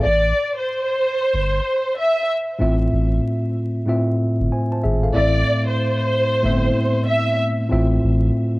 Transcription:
0.03 0.32 A1 loud
0.03 0.53 D5 medium
0.58 1.93 C5 medium
1.33 1.60 G1 loud
1.99 2.26 E5 medium
2.59 2.88 A1 loud
2.59 3.70 A2 loud
2.59 3.70 A3 medium
2.59 3.71 C4 medium
2.59 3.71 F4 medium
2.59 3.71 E5 loud
2.93 3.19 A1 loud
3.86 4.98 A2 medium
3.86 4.98 A3 medium
3.86 4.98 C4 medium
3.86 4.99 F4 medium
3.86 4.52 E5 medium
4.40 4.50 G1 medium
4.52 4.71 C5 medium
4.52 4.71 G#5 medium
4.72 4.84 C5 medium
4.72 4.83 A5 medium
4.84 5.11 G#1 medium
4.84 5.03 G#4 medium
4.84 5.02 E5 medium
5.03 5.34 A4 medium
5.03 5.34 F5 medium
5.13 5.43 A1 loud
5.13 6.25 A2 medium
5.13 6.25 A3 medium
5.13 6.26 C4 medium
5.13 6.26 E4 medium
5.13 5.64 D5 loud
5.13 6.26 E5 medium
5.68 7.04 C5 medium
6.42 6.70 G1 loud
6.42 7.53 A2 medium
6.42 7.54 A3 medium
6.42 6.52 B3 medium
6.42 7.55 E4 medium
6.42 7.55 E5 loud
6.50 7.57 C4 medium
7.07 7.36 E5 medium
7.69 7.98 A1 loud
7.69 8.60 A2 loud
7.69 8.60 A3 medium
7.69 8.60 C4 medium
7.69 8.60 F4 medium
7.69 8.60 E5 loud
8.03 8.30 A1 loud

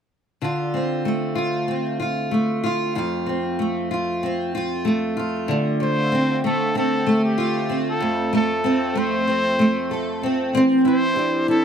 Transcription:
0.42 2.96 D3 medium
0.42 1.35 F4 soft
0.74 1.68 C4 soft
1.05 2.31 A3 soft
1.35 1.99 F4 medium
1.68 3.26 C4 soft
2.00 2.63 F4 medium
2.31 3.58 A3 soft
2.64 2.95 F4 medium
2.95 5.49 F2 medium
2.95 3.90 F4 medium
3.26 4.23 C4 soft
3.59 4.84 A3 soft
3.91 4.54 F4 medium
4.23 6.12 C4 soft
4.55 5.16 F4 medium
4.85 5.80 A3 medium
5.17 7.37 F4 medium
5.48 8.01 D3 medium
5.48 5.81 A3 medium
5.80 6.44 A3 soft
5.80 6.41 C5 medium
6.12 6.75 C4 medium
6.44 7.06 A3 soft
6.44 6.74 A4 medium
6.75 7.69 C4 soft
6.75 7.21 A4 medium
7.06 8.32 A3 medium
7.25 7.83 G4 medium
7.38 9.91 F4 medium
7.69 8.64 C4 medium
7.89 8.32 A4 medium
8.00 10.53 F2 medium
8.00 8.32 A3 medium
8.33 8.94 A3 medium
8.33 9.00 A4 medium
8.64 9.27 C4 medium
8.95 9.58 A3 medium
8.95 10.23 C5 medium
9.28 10.23 C4 medium
9.59 10.60 A3 medium
9.90 10.59 F4 medium
9.90 10.60 A4 medium
10.23 10.55 C4 medium
10.53 11.65 E3 medium
10.53 11.65 C4 medium
10.84 11.47 C4 medium
10.84 11.47 E4 soft
10.84 11.45 C5 medium
11.16 11.65 D4 medium
11.16 11.65 G4 medium
11.48 11.65 C4 medium
11.48 11.65 E4 medium
11.48 11.65 A4 medium

